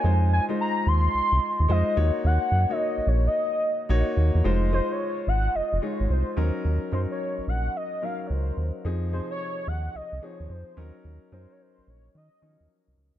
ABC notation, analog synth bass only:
X:1
M:4/4
L:1/16
Q:"Swing 16ths" 1/4=109
K:Ebdor
V:1 name="Analog synth bass" clef=bass
F,,3 z3 E,,2 C,, C,, z E,, F,, z E,, z | E,, z G,, z2 B,,, B,,,2 z4 B,,, z E,, _F,, | F,,,3 z3 A,,,2 F,,, F,,, z A,,, C,, z E,, z | E,, z G,, z2 B,,, B,,,2 z4 D,,2 E,, z |
F,,3 z3 E,,2 C,, C,, z E,, F,, z E,, z | E,, z G,, z2 B,,, B,,,2 E, z E, E,, z C,, D,, =D,, |]